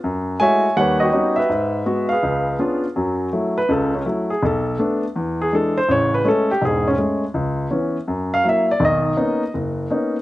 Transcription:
X:1
M:4/4
L:1/8
Q:"Swing" 1/4=164
K:F#m
V:1 name="Grand piano"
z2 [ceg]2 [Bcf] [F=G^d]2 [Be]- | [Be]3 [GB^e]4 z | z3 B A C z G | A3 z2 G A ^B |
c B A =G ^G C z2 | z4 z ^e =e d | ^d4 z4 |]
V:2 name="Grand piano"
F,,2 [G,A,EF] z [^D,,=G,]2 [G,B,C^D] z | G,,2 [G,B,F] z C,,2 [B,CD^E] z | [F,,F,]2 [F,A,E] z [C,,C,]2 [F,A,E] z | B,,,2 [A,B,D] z E,,2 [E,G,D] z |
[A,,,C,]2 [G,A,C] z [E,,,G,,]2 [G,A,C] z | C,,2 [E,B,C] z F,,2 [F,^A,E] z | [B,,,^D,]2 [^A,B,C^D] z F,,,2 [A,B,CD] z |]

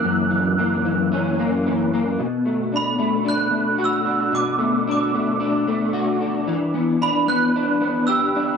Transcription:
X:1
M:4/4
L:1/8
Q:1/4=112
K:Bm
V:1 name="Glockenspiel"
f'6- f' z | z2 b2 f'2 e'2 | d'2 d'4- d' z | z2 b f'3 e'2 |]
V:2 name="Clean electric guitar"
[F,,E,^A,C] E, A, E, C A, E, A, | B,, A, D A, D A, F D | B,, A, D A, D A, F D | E, B, D B, D B, G D |]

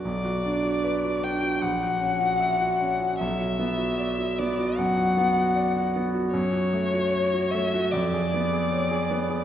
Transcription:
X:1
M:4/4
L:1/16
Q:1/4=76
K:Bm
V:1 name="Violin"
d6 g2 f8 | e6 d2 f6 z2 | c6 e2 d8 |]
V:2 name="Grand piano"
B,,, F D F B F D F ^A,,, F C F e F C F | B,,, F B, F d F B, F F,, F B, F d F B, F | F,, F A, F c F A, F ^E,, ^G B, G c G B, G |]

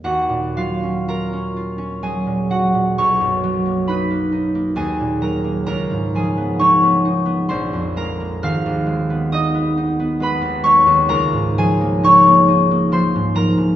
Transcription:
X:1
M:3/4
L:1/16
Q:1/4=66
K:Ebm
V:1 name="Harp"
[Gefg]2 [Ff]2 [Bb]4 [Aa]2 [Gg]2 | [dd']4 [=B=b]4 [Aa]2 [_B_b]2 | [Bb]2 [Aa]2 [dd']4 [=c=c']2 [Bb]2 | [ff']4 [ee']4 [cc']2 [dd']2 |
[K:Db] [Bb]2 [Aa]2 [dd']4 [cc']2 [Bb]2 |]
V:2 name="Harp" clef=bass
[E,,G,B,D] B,, G, D F D F D G, B,, G, B,, | =B,,, ^F,, ^F, ^A, ^D A, D A, E,, _B,, G, B, | D,, A,, F, C E C E C B,,, F,, A, B, | A,,, E,, A, C E C E C A, E,, A, E,, |
[K:Db] D,, A,, F, B, E B, E B, F, A,, F, A,, |]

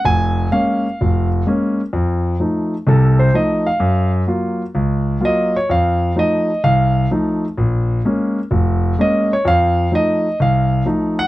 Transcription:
X:1
M:4/4
L:1/8
Q:"Swing" 1/4=128
K:Bbm
V:1 name="Grand piano"
a2 f3 z3 | z4 =A c e f- | f z4 z e d | f2 e2 f2 z2 |
z6 e d | f2 e2 f2 z g |]
V:2 name="Grand piano" clef=bass
F,,,2 [A,B,D] z F,,,2 [A,B,D] z | F,,2 [F,=A,E] z [C,,C,]2 [F,A,E] z | G,,2 [G,B,F] z D,,2 [G,B,F] z | F,,2 [F,=A,E] z C,,2 [F,A,E] z |
B,,,2 [A,B,D] z F,,,2 [A,B,D] z | F,,2 [F,=A,E] z C,,2 [F,A,E] z |]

